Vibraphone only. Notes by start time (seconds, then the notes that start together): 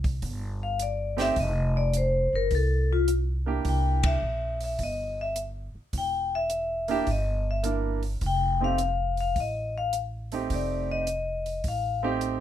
0.63 F5
0.82 D5
1.21 E5
1.40 D#5
1.77 D5
1.97 C5
2.35 A#4
2.55 A4
2.93 F4
3.69 G5
4.06 E5
4.64 E5
4.83 D#5
5.21 E5
5.98 G5
6.35 E5
6.91 E5
7.11 D#5
7.51 E5
8.26 G5
8.64 F5
9.21 F5
9.40 D#5
9.78 F5
10.54 D5
10.91 D#5
11.68 F5